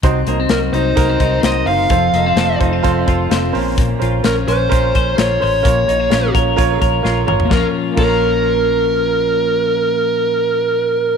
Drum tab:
CC |----------------|----------------|----------------|----------------|
HH |x-x-x-x-x-x-x-o-|x-x-x-x-x-x-x-o-|x-x-x-x-x-x-x-o-|x-x-x-x-x-x-----|
SD |----o-------o---|----o-------o---|----o-------o---|----o-------o---|
T2 |----------------|----------------|----------------|--------------o-|
FT |----------------|----------------|----------------|---------------o|
BD |o-------o-o-----|o-----o-o-o-----|o-------o-o-----|o-----o-o-o-----|

CC |----x-----------|----------------|
HH |----------------|----------------|
SD |o---------------|----------------|
T2 |----------------|----------------|
FT |----------------|----------------|
BD |o---o-----------|----------------|